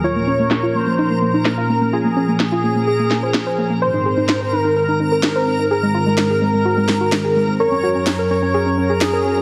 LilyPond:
<<
  \new Staff \with { instrumentName = "Synth texture" } { \time 4/4 \key aes \mixolydian \tempo 4 = 127 <bes' bes''>1~ | <bes' bes''>1~ | <bes' bes''>1~ | <bes' bes''>1~ |
<bes' bes''>1 | }
  \new Staff \with { instrumentName = "Analog synth lead" } { \time 4/4 \key aes \mixolydian des''4. c''4. bes'4 | aes'1 | c''4. bes'4. bes'4 | bes'1 |
des''4. des''4. aes'4 | }
  \new Staff \with { instrumentName = "Synth pluck" } { \time 4/4 \key aes \mixolydian f'16 bes16 des'16 bes16 bes16 f'16 bes16 bes16 ees'16 bes16 bes16 ees'16 bes16 f'16 bes16 bes16 | f'16 bes16 des'16 bes16 bes16 f'16 bes16 bes16 aes'16 bes16 bes16 c''16 bes16 c''16 bes16 bes16 | c''16 ees'16 aes'16 ees'16 ees'16 c''16 ees'16 ees'16 bes'16 ees'16 ees'16 bes'16 ees'16 c''16 ees'16 ees'16 | aes'16 aes16 f'16 aes16 aes16 aes'16 aes16 aes16 ges'16 aes16 aes16 ges'16 aes16 aes'16 aes16 aes16 |
bes'16 des'16 ges'16 des'16 des'16 bes'16 des'16 des'16 aes'16 des'16 des'16 aes'16 des'16 bes'16 des'16 des'16 | }
  \new Staff \with { instrumentName = "Analog synth pad" } { \time 4/4 \key aes \mixolydian << { bes'1 | aes'1 | bes'1~ | bes'1~ |
bes'1 | } \\ { <bes, f des'>1~ | <bes, f des'>1 | <aes, ees c'>1~ | <aes, ees c'>1 |
<ges, ges des'>1 | } >> }
  \new DrumStaff \with { instrumentName = "Drums" } \drummode { \time 4/4 r4 sn4 r4 sn4 | r4 sn4 r8 sn8 sn4 | r4 sn4 r4 sn4 | r4 sn4 r8 sn8 sn4 |
r4 sn4 r4 sn4 | }
>>